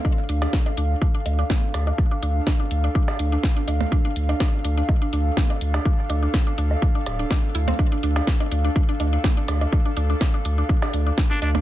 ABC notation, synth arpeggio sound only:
X:1
M:4/4
L:1/16
Q:"Swing 16ths" 1/4=124
K:Dm
V:1 name="Synth arpeggio sound"
D z D D z D D z D D z D D z D D | z D D z D D z D D z D D z D D z | D D z D D z D D z D D z D D z D | D z D D z D D z D D z D D z E C |
D D D D D D D D D D D D D D D D | D D D D D D D D D D D D D D D D |]